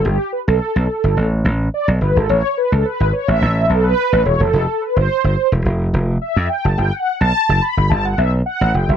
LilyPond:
<<
  \new Staff \with { instrumentName = "Analog polysynth" } { \time 4/4 \key g \major \tempo 4 = 107 g'8 b'16 a'4. r8. d''8 b'16 a'16 | cis''8 b'16 a'16 b'8 cis''16 e''8. a'16 b'8. cis''16 a'16~ | a'8 b'16 c''4 r4 r16 e''8 g''16 a''16 | g''16 fis''8 a''8. b''16 b''16 a''16 fis''16 e''8 fis''8 g''16 e''16 | }
  \new Staff \with { instrumentName = "Slap bass" } { \clef bass \time 4/4 \key g \major g,,16 r8 b,,16 r16 b,,16 r16 g,,16 a,,8 a,,8 r16 b,,16 g,,16 aes,,16 | a,,16 r8 cis,16 r16 gis,,16 r16 a,,16 a,,8 b,,8 r16 a,,16 ees,,16 e,,16 | f,,16 r8 g,,16 r16 g,,16 r16 e,,16 f,,8 f,,8 r16 f,16 r16 fis,,16 | g,,16 r8 b,,16 r16 fis,,16 r16 g,,16 g,,8 b,,8 r16 a,,16 f,,16 fis,,16 | }
>>